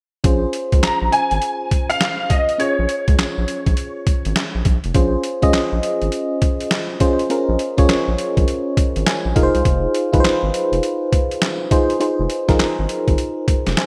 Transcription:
0.24 analog synth bass A#1, fm electric piano C#4 F4 G#4 C5, kick, closed hi-hat
0.53 closed hi-hat
0.72 analog synth bass C#2, kick, closed hi-hat
0.83 analog synth bass A#1, grand piano A#5, snare, clap, closed hi-hat
1.02 analog synth bass A#1
1.12 grand piano G#5, closed hi-hat
1.31 analog synth bass G#1, closed hi-hat
1.42 closed hi-hat
1.71 kick, closed hi-hat
1.90 grand piano F5, closed hi-hat
2.01 snare, clap, closed hi-hat
2.30 grand piano D#5, kick, closed hi-hat
2.49 closed hi-hat
2.58 fm electric piano C#4 F4 G#4 C#5, grand piano C#5, closed hi-hat
2.79 analog synth bass A#1
2.89 closed hi-hat
3.08 analog synth bass C#2, kick, closed hi-hat
3.19 analog synth bass A#1, snare, clap, closed hi-hat
3.38 analog synth bass A#1
3.48 closed hi-hat
3.66 analog synth bass A#1, kick, closed hi-hat
3.77 closed hi-hat
4.07 analog synth bass G#1, kick, closed hi-hat
4.25 analog synth bass G#1, closed hi-hat
4.36 snare, clap, closed hi-hat
4.55 analog synth bass A#1
4.65 analog synth bass A#1, kick, closed hi-hat
4.84 analog synth bass F1, closed hi-hat
4.94 analog synth bass A#1, fm electric piano C#4 F4 G#4 C5, kick, closed hi-hat
5.24 closed hi-hat
5.42 analog synth bass C#2, fm electric piano C#4 F4 G#4 D#5, kick, closed hi-hat
5.53 analog synth bass A#1, snare, clap, closed hi-hat
5.72 analog synth bass A#1
5.83 closed hi-hat
6.02 analog synth bass G#1, closed hi-hat
6.12 closed hi-hat
6.42 kick, closed hi-hat
6.60 closed hi-hat
6.71 snare, clap, closed hi-hat
7.00 fm electric piano C#4 F4 G#4 C5, kick, closed hi-hat
7.19 closed hi-hat
7.30 fm electric piano C#4 F4 G#4 A#4, closed hi-hat
7.49 analog synth bass A#1
7.59 closed hi-hat
7.77 analog synth bass C#2, fm electric piano C#4 F4 G#4 C#5, kick, closed hi-hat
7.89 analog synth bass A#1, snare, clap, closed hi-hat
8.08 analog synth bass A#1
8.18 closed hi-hat
8.37 analog synth bass A#1, kick, closed hi-hat
8.48 closed hi-hat
8.77 analog synth bass G#1, kick, closed hi-hat
8.96 analog synth bass G#1, closed hi-hat
9.06 fm electric piano G#5, snare, clap, closed hi-hat
9.25 analog synth bass A#1
9.35 analog synth bass F1, fm electric piano D#4 F4 G#4 A#4 F5, kick, closed hi-hat
9.43 fm electric piano C5
9.55 analog synth bass C2, closed hi-hat
9.65 analog synth bass F1, kick, closed hi-hat
9.95 closed hi-hat
10.13 analog synth bass A#1, fm electric piano D#4 F4 G#4 B4, kick, closed hi-hat
10.20 fm electric piano C5
10.24 analog synth bass G#1, snare, clap, closed hi-hat
10.43 analog synth bass G#1
10.54 closed hi-hat
10.72 analog synth bass F1, closed hi-hat
10.83 closed hi-hat
11.13 kick, closed hi-hat
11.31 closed hi-hat
11.42 snare, clap, closed hi-hat
11.71 fm electric piano D#4 F4 G#4 C5, kick, closed hi-hat
11.90 closed hi-hat
12.00 fm electric piano D#4 F4 G#4 C5, closed hi-hat
12.20 analog synth bass F1
12.30 closed hi-hat
12.48 analog synth bass A#1, fm electric piano D#4 F4 G#4 A#4, kick, snare, closed hi-hat
12.59 analog synth bass G#1, snare, clap, closed hi-hat
12.79 analog synth bass G#1
12.89 closed hi-hat
13.08 analog synth bass G#1, kick, closed hi-hat
13.18 closed hi-hat
13.48 analog synth bass F1, kick, closed hi-hat
13.66 analog synth bass F1, snare, closed hi-hat
13.77 fm electric piano C5 G#5, snare, clap, closed hi-hat

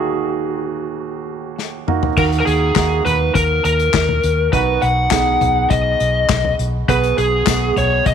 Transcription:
Already playing: grand piano D#2 D#3 A#3 D#4 F#4 G#4, lead electric guitar F#4
1.59 snare
1.88 grand piano A#3 D#4 F#4, mid tom
2.03 floor tom
2.17 fingered electric bass D#2, grand piano D#3 A#3 D#4 F#4, lead electric guitar A#4, kick, crash
2.32 closed hi-hat
2.40 lead electric guitar A#4
2.46 fingered electric bass D#2, lead electric guitar G#4, closed hi-hat
2.75 fingered electric bass D#2, grand piano A#3 D#4 F#4, kick, snare, clap, closed hi-hat
3.05 fingered electric bass D#2, lead electric guitar B4, closed hi-hat, floor tom
3.35 fingered electric bass D#2, lead electric guitar A#4, kick, closed hi-hat
3.64 fingered electric bass D#2, lead electric guitar A#4, closed hi-hat
3.79 closed hi-hat
3.93 fingered electric bass D#2, kick, snare, clap, closed hi-hat
4.09 floor tom
4.23 fingered electric bass D#2, closed hi-hat
4.53 fingered electric bass B1, grand piano B2 B3 D#4 F#4, lead electric guitar B4, kick, closed hi-hat
4.82 fingered electric bass B1, lead electric guitar F#5, closed hi-hat
5.11 fingered electric bass B1, grand piano B3 D#4 G#4, kick, snare, clap, closed hi-hat
5.41 fingered electric bass B1, closed hi-hat, floor tom
5.70 fingered electric bass B1, lead electric guitar D#5, kick, closed hi-hat
6.00 fingered electric bass B1, closed hi-hat
6.29 fingered electric bass B1, kick, snare, clap, closed hi-hat
6.45 floor tom
6.59 fingered electric bass B1, closed hi-hat
6.88 fingered electric bass B1, grand piano B2 B3 F#4 G#4, lead electric guitar B4, kick, closed hi-hat
7.03 closed hi-hat
7.18 fingered electric bass B1, lead electric guitar G#4, closed hi-hat
7.46 fingered electric bass B1, grand piano B3 F#4 G#4, kick, snare, clap, closed hi-hat, tambourine
7.76 fingered electric bass B1, lead electric guitar C#5, closed hi-hat, floor tom
8.06 fingered electric bass B1, lead electric guitar D#5, kick, closed hi-hat

